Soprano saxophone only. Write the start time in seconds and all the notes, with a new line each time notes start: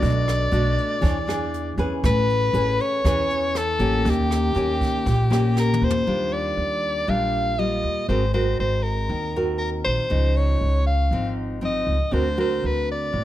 Already playing: D5
2.06 B4
2.81 C#5
3.57 A4
4.09 G4
5.60 A#4
5.84 C5
6.33 D5
7.09 F5
7.59 D#5
8.09 C5
8.34 C5
8.60 C5
8.83 A#4
9.58 A#4
9.85 C5
10.36 C#5
10.87 F5
11.65 D#5
12.13 C5
12.40 C5
12.66 B4
12.92 D5